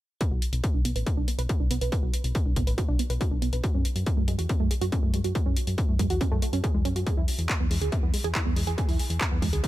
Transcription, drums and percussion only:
0.21 kick, closed hi-hat
0.42 closed hi-hat
0.53 closed hi-hat
0.64 kick, closed hi-hat
0.85 closed hi-hat
0.96 closed hi-hat
1.06 kick, closed hi-hat
1.28 closed hi-hat
1.39 closed hi-hat
1.49 kick, closed hi-hat
1.71 closed hi-hat
1.81 closed hi-hat
1.92 kick, closed hi-hat
2.14 closed hi-hat
2.24 closed hi-hat
2.35 kick, closed hi-hat
2.56 kick, closed hi-hat
2.67 closed hi-hat
2.78 kick, closed hi-hat
2.99 closed hi-hat
3.10 closed hi-hat
3.21 kick, closed hi-hat
3.42 closed hi-hat
3.53 closed hi-hat
3.64 kick, closed hi-hat
3.85 closed hi-hat
3.96 closed hi-hat
4.06 kick, closed hi-hat
4.28 closed hi-hat
4.39 closed hi-hat
4.49 kick, closed hi-hat
4.71 closed hi-hat
4.82 closed hi-hat
4.92 kick, closed hi-hat
5.14 closed hi-hat
5.24 closed hi-hat
5.35 kick, closed hi-hat
5.57 closed hi-hat
5.67 closed hi-hat
5.78 kick, closed hi-hat
5.99 kick, closed hi-hat
6.10 closed hi-hat
6.21 kick, closed hi-hat
6.42 closed hi-hat
6.53 closed hi-hat
6.64 kick, closed hi-hat
6.85 closed hi-hat
6.96 closed hi-hat
7.07 kick, closed hi-hat
7.28 open hi-hat
7.39 closed hi-hat
7.49 kick, clap, closed hi-hat
7.71 open hi-hat
7.82 closed hi-hat
7.92 kick, closed hi-hat
8.14 open hi-hat
8.24 closed hi-hat
8.35 kick, clap, closed hi-hat
8.56 open hi-hat
8.67 closed hi-hat
8.78 kick, closed hi-hat
8.89 open hi-hat
8.99 open hi-hat
9.10 closed hi-hat
9.21 kick, clap, closed hi-hat
9.42 kick, open hi-hat
9.53 closed hi-hat
9.64 kick, closed hi-hat

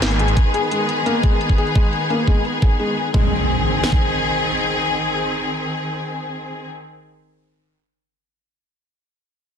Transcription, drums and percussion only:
0.02 snare, closed hi-hat
0.11 closed hi-hat
0.19 closed hi-hat
0.28 closed hi-hat
0.37 kick, closed hi-hat
0.54 closed hi-hat
0.71 closed hi-hat
0.89 closed hi-hat
1.06 closed hi-hat
1.23 kick, closed hi-hat
1.41 closed hi-hat
1.49 kick, closed hi-hat
1.58 closed hi-hat
1.67 closed hi-hat
1.75 kick, closed hi-hat
1.93 closed hi-hat
2.10 closed hi-hat
2.28 kick, closed hi-hat
2.45 closed hi-hat
2.62 kick, closed hi-hat
2.71 closed hi-hat
2.80 closed hi-hat
2.88 closed hi-hat
2.97 closed hi-hat
3.06 closed hi-hat
3.14 kick
3.84 snare
3.92 kick

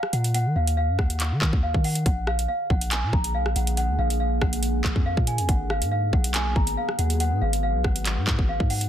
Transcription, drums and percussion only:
0.03 cross-stick
0.13 closed hi-hat
0.24 closed hi-hat
0.34 closed hi-hat
0.67 closed hi-hat
0.99 kick, cross-stick
1.10 closed hi-hat
1.20 clap, closed hi-hat
1.42 kick, clap
1.53 kick
1.74 kick
1.84 open hi-hat
1.95 closed hi-hat
2.06 kick, closed hi-hat
2.27 cross-stick
2.39 closed hi-hat
2.70 kick
2.81 closed hi-hat
2.91 clap, closed hi-hat
3.13 kick
3.24 closed hi-hat
3.46 cross-stick
3.56 closed hi-hat
3.67 closed hi-hat
3.77 closed hi-hat
4.10 closed hi-hat
4.42 kick, cross-stick
4.53 closed hi-hat
4.63 closed hi-hat
4.84 kick, clap
4.96 kick
5.17 kick
5.27 closed hi-hat
5.38 closed hi-hat
5.49 kick, closed hi-hat
5.70 cross-stick
5.82 closed hi-hat
6.13 kick
6.24 closed hi-hat
6.34 clap, closed hi-hat
6.56 kick
6.67 closed hi-hat
6.89 cross-stick
6.99 closed hi-hat
7.10 closed hi-hat
7.20 closed hi-hat
7.53 closed hi-hat
7.84 kick, cross-stick
7.96 closed hi-hat
8.05 clap, closed hi-hat
8.27 kick, clap
8.39 kick
8.60 kick
8.70 open hi-hat
8.81 closed hi-hat

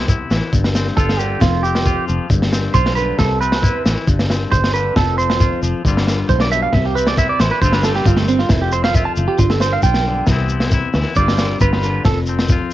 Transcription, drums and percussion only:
0.08 kick, shekere
0.31 snare, shekere
0.53 kick, shekere
0.64 snare
0.75 snare, shekere
0.87 snare
0.97 kick, shekere
1.09 snare
1.20 shekere
1.41 kick, snare, shekere
1.65 shekere
1.75 snare
1.86 kick, shekere
2.09 shekere
2.30 kick, shekere
2.42 snare
2.53 snare, shekere
2.74 kick, shekere
2.86 snare
2.97 shekere
3.19 kick, snare, shekere
3.42 shekere
3.52 snare
3.63 kick, shekere
3.86 snare, shekere
4.08 kick, shekere
4.19 snare
4.30 snare, shekere
4.52 kick, shekere
4.64 snare
4.75 shekere
4.96 kick, snare, shekere
5.19 shekere
5.30 snare
5.40 kick, shekere
5.63 shekere
5.85 kick, shekere
5.97 snare
6.07 snare, shekere
6.29 kick, shekere
6.40 snare
6.52 shekere
6.73 kick, snare, shekere
6.97 shekere
7.07 snare
7.17 kick, shekere
7.40 snare, shekere
7.62 kick, shekere
7.73 snare
7.83 snare, shekere
7.95 snare
8.05 kick, shekere
8.17 snare
8.28 shekere
8.39 snare
8.49 kick, snare, shekere
8.72 shekere
8.84 snare
8.94 kick, shekere
9.16 shekere
9.39 kick, shekere
9.50 snare
9.60 snare, shekere
9.83 kick, shekere
9.94 snare
10.27 kick, snare, shekere
10.49 shekere
10.60 snare
10.71 kick, shekere
10.94 snare, shekere
11.16 kick, shekere
11.28 snare
11.38 snare, shekere
11.60 kick, shekere
11.73 snare
11.83 shekere
12.05 kick, snare, shekere
12.26 shekere
12.39 snare
12.49 kick, shekere

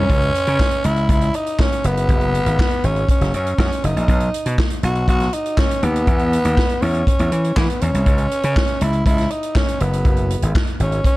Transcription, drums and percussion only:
0.10 kick, closed hi-hat
0.21 closed hi-hat
0.35 closed hi-hat
0.47 closed hi-hat
0.60 kick, snare, clap
0.71 closed hi-hat
0.84 closed hi-hat
0.96 closed hi-hat
1.09 kick, closed hi-hat
1.21 closed hi-hat
1.34 closed hi-hat
1.47 closed hi-hat
1.59 kick, snare, clap
1.73 closed hi-hat
1.84 closed hi-hat
1.97 closed hi-hat
2.09 kick, closed hi-hat
2.21 closed hi-hat
2.35 closed hi-hat
2.46 closed hi-hat
2.59 kick, snare, clap
2.71 closed hi-hat
2.84 closed hi-hat
2.96 closed hi-hat
3.09 kick, closed hi-hat
3.21 snare, closed hi-hat
3.34 closed hi-hat
3.47 closed hi-hat
3.58 kick, snare, clap
3.72 closed hi-hat
3.84 closed hi-hat
3.97 closed hi-hat
4.08 kick, closed hi-hat
4.20 closed hi-hat
4.34 closed hi-hat
4.46 closed hi-hat
4.58 kick, snare, clap
4.70 closed hi-hat
4.83 closed hi-hat
4.95 closed hi-hat
5.08 kick, closed hi-hat
5.20 snare, closed hi-hat
5.33 closed hi-hat
5.46 closed hi-hat
5.57 kick, snare, clap
5.71 closed hi-hat
5.83 closed hi-hat
5.96 closed hi-hat
6.07 kick, closed hi-hat
6.19 closed hi-hat
6.33 closed hi-hat
6.45 closed hi-hat
6.57 kick, snare, clap
6.69 closed hi-hat
6.82 open hi-hat
6.94 closed hi-hat
7.07 kick, closed hi-hat
7.19 closed hi-hat
7.32 closed hi-hat
7.44 closed hi-hat
7.57 kick, snare, clap
7.70 closed hi-hat
7.81 closed hi-hat
7.94 closed hi-hat
8.06 kick, closed hi-hat
8.18 closed hi-hat
8.31 closed hi-hat
8.43 closed hi-hat
8.56 kick, snare, clap
8.68 closed hi-hat
8.81 closed hi-hat
8.93 closed hi-hat
9.06 kick, closed hi-hat
9.18 snare, closed hi-hat
9.30 closed hi-hat
9.43 closed hi-hat
9.55 kick, snare, clap
9.68 closed hi-hat
9.80 closed hi-hat
9.93 closed hi-hat
10.05 kick, closed hi-hat
10.17 closed hi-hat
10.30 closed hi-hat
10.42 closed hi-hat
10.55 kick, snare, clap
10.67 closed hi-hat
10.80 closed hi-hat
10.92 closed hi-hat
11.04 kick, closed hi-hat

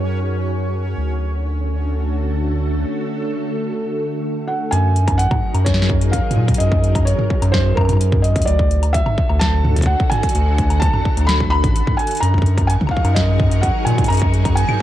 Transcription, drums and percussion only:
4.72 closed hi-hat
4.96 closed hi-hat
5.08 kick, closed hi-hat, high woodblock
5.19 closed hi-hat
5.31 kick, mid tom, high woodblock
5.55 closed hi-hat, high woodblock
5.66 kick, snare, closed hi-hat
5.74 snare
5.82 snare
5.90 kick
6.01 closed hi-hat
6.13 kick, closed hi-hat
6.31 closed hi-hat, mid tom
6.48 kick, closed hi-hat
6.54 closed hi-hat
6.60 closed hi-hat
6.72 kick
6.84 closed hi-hat
6.95 kick, closed hi-hat, high woodblock
7.07 closed hi-hat
7.19 mid tom
7.30 kick
7.42 closed hi-hat, high woodblock
7.54 kick, snare
7.77 kick, high woodblock
7.81 high woodblock
7.85 closed hi-hat, mid tom, high woodblock
7.89 high woodblock
7.93 high woodblock
7.97 closed hi-hat, high woodblock
8.12 kick, mid tom
8.24 closed hi-hat
8.36 kick, closed hi-hat
8.42 closed hi-hat
8.47 closed hi-hat
8.59 kick
8.71 closed hi-hat
8.83 closed hi-hat, high woodblock
8.94 kick, closed hi-hat
9.06 mid tom, high woodblock
9.18 kick
9.30 high woodblock
9.41 kick, snare, closed hi-hat
9.65 mid tom
9.76 kick, closed hi-hat
9.79 kick
9.81 kick, closed hi-hat
9.83 kick
9.86 kick
10.00 kick
10.12 closed hi-hat, mid tom
10.23 kick, closed hi-hat
10.29 closed hi-hat
10.35 closed hi-hat
10.58 kick, closed hi-hat
10.70 closed hi-hat, high woodblock
10.82 kick, closed hi-hat
10.94 mid tom, high woodblock
11.05 kick
11.17 closed hi-hat, high woodblock
11.21 high woodblock
11.25 snare, closed hi-hat, high woodblock
11.40 kick
11.52 high woodblock
11.64 kick, closed hi-hat, mid tom
11.76 closed hi-hat
11.87 kick, mid tom
11.99 closed hi-hat
12.07 closed hi-hat
12.11 closed hi-hat
12.15 closed hi-hat
12.17 closed hi-hat
12.23 closed hi-hat
12.34 kick
12.38 kick
12.42 kick
12.46 closed hi-hat
12.58 kick, closed hi-hat, high woodblock
12.70 closed hi-hat
12.81 kick, mid tom
12.87 kick, high woodblock
12.97 kick
13.05 closed hi-hat, high woodblock
13.16 kick, snare, closed hi-hat
13.40 kick, mid tom
13.51 closed hi-hat
13.63 kick, closed hi-hat
13.87 closed hi-hat, mid tom
13.93 mid tom
13.98 kick, closed hi-hat, mid tom
14.04 closed hi-hat, mid tom
14.06 closed hi-hat
14.10 closed hi-hat
14.12 closed hi-hat
14.14 closed hi-hat
14.17 closed hi-hat
14.19 kick, closed hi-hat
14.34 closed hi-hat
14.45 kick, closed hi-hat, high woodblock
14.57 closed hi-hat
14.69 mid tom, high woodblock

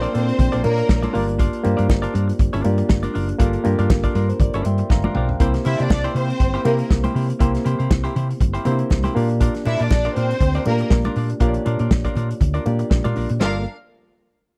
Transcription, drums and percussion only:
0.03 closed hi-hat
0.15 closed hi-hat
0.29 closed hi-hat
0.39 kick, closed hi-hat, low conga
0.53 closed hi-hat
0.64 closed hi-hat, muted conga
0.77 closed hi-hat
0.89 kick, snare, high conga
1.03 closed hi-hat, high conga
1.15 open hi-hat
1.29 closed hi-hat
1.39 kick, closed hi-hat
1.53 closed hi-hat
1.65 closed hi-hat, muted conga
1.79 closed hi-hat
1.90 kick, snare, high conga
2.03 closed hi-hat
2.15 closed hi-hat
2.29 closed hi-hat
2.39 kick, closed hi-hat
2.53 closed hi-hat
2.64 closed hi-hat, muted conga
2.78 closed hi-hat
2.89 kick, snare, high conga
3.03 closed hi-hat, high conga
3.15 open hi-hat
3.29 closed hi-hat
3.40 kick, closed hi-hat
3.53 closed hi-hat
3.65 closed hi-hat, muted conga
3.79 closed hi-hat
3.90 kick, snare, high conga
4.03 kick, closed hi-hat
4.15 closed hi-hat
4.30 closed hi-hat
4.40 kick, closed hi-hat, low conga
4.54 closed hi-hat
4.65 closed hi-hat, muted conga
4.78 closed hi-hat
4.90 kick, snare, high conga
5.04 high tom, high conga
5.15 mid tom
5.29 floor tom
5.40 kick, closed hi-hat
5.54 snare, closed hi-hat
5.65 closed hi-hat, muted conga
5.80 closed hi-hat
5.90 kick, snare, high conga
6.04 closed hi-hat
6.16 closed hi-hat
6.30 closed hi-hat
6.40 kick, closed hi-hat
6.54 closed hi-hat
6.65 closed hi-hat, muted conga
6.79 closed hi-hat
6.91 kick, snare, high conga
7.04 closed hi-hat, high conga
7.16 open hi-hat
7.30 closed hi-hat
7.41 kick, closed hi-hat
7.55 snare, closed hi-hat
7.66 closed hi-hat, muted conga
7.80 closed hi-hat
7.91 kick, snare, high conga
8.05 closed hi-hat
8.16 closed hi-hat, low conga
8.31 closed hi-hat
8.41 kick, closed hi-hat, low conga
8.55 closed hi-hat
8.65 closed hi-hat, muted conga
8.79 closed hi-hat
8.90 kick, snare, high conga
9.04 closed hi-hat, high conga
9.16 open hi-hat
9.30 closed hi-hat
9.41 kick, closed hi-hat
9.55 snare, closed hi-hat
9.65 closed hi-hat, muted conga
9.80 closed hi-hat
9.91 kick, snare, high conga
10.05 closed hi-hat
10.16 closed hi-hat
10.31 closed hi-hat
10.41 kick, closed hi-hat, muted conga
10.54 closed hi-hat
10.65 closed hi-hat, muted conga
10.78 closed hi-hat
10.90 kick, snare, high conga
11.04 closed hi-hat, high conga
11.16 open hi-hat
11.30 closed hi-hat
11.40 kick, closed hi-hat
11.54 closed hi-hat
11.66 closed hi-hat, muted conga
11.79 closed hi-hat
11.91 kick, snare, high conga
12.05 kick, closed hi-hat
12.15 closed hi-hat, low conga
12.31 closed hi-hat
12.41 kick, closed hi-hat, muted conga, low conga
12.55 closed hi-hat
12.66 closed hi-hat, muted conga
12.79 closed hi-hat
12.91 kick, snare, high conga
13.05 closed hi-hat, high conga
13.16 open hi-hat
13.29 closed hi-hat
13.41 snare, muted conga

